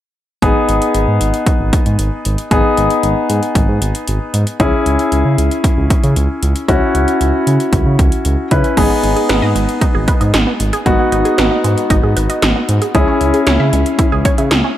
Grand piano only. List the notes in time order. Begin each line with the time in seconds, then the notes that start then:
0.42 B3 D#4 G#4
2.51 B3 D#4 G#4
4.60 C#4 E4 G#4
6.68 C#4 E4 F#4
8.51 C#4 E4 B4
8.77 B3 D#4 G#4
10.86 B3 D#4 F#4
12.95 C#4 E4 G#4